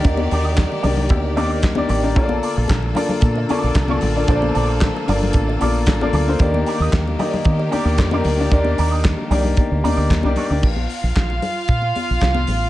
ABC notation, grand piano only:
X:1
M:4/4
L:1/16
Q:1/4=113
K:Bb
V:1 name="Grand piano"
[B,DE_G=Gd]4 z2 [B,DEGd]3 z [B,DEGd]2 z [B,DEGd] z [B,DEGd] | [B,DFA_d=d]4 z2 [B,DFAd]3 z [B,DFAd]2 z [B,DFAd] z [B,DFAd] | [B,DFAcd]4 z2 [B,DFAd]3 z [B,DFAd]2 z [B,DFAd] z [B,DFAc] | [B,DEGd]4 z2 [B,EGde]3 z [B,DEGd]2 z [B,DEGB] z [B,DEGd] |
[B,DEGd]4 z2 [B,DEGd]3 z [B,DEGd]2 z [B,DEGd] z [B,DEGd] | z16 |]